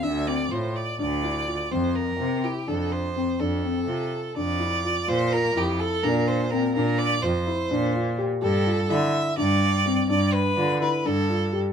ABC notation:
X:1
M:7/8
L:1/8
Q:1/4=125
K:Bblyd
V:1 name="Violin"
e d c d d3 | c B2 G A c2 | A4 d3 | c B G A B c B |
B d c4 z | A2 e2 d3 | d =B2 B A2 z |]
V:2 name="Felt piano"
D C F2 D E F | C2 C E D2 C | D C F2 D E F | F F E2 D2 C |
D2 F E D F G | G F E2 D2 C | D2 F E D F G |]
V:3 name="Cello" clef=bass
D,,2 A,, z D,,3 | F,,2 C, z F,,3 | F,,2 C, z F,,3 | B,,2 F,, z B,,3 |
B,,2 F,, z B,,3 | G,,2 D, z G,,3 | G,,2 D, z G,,3 |]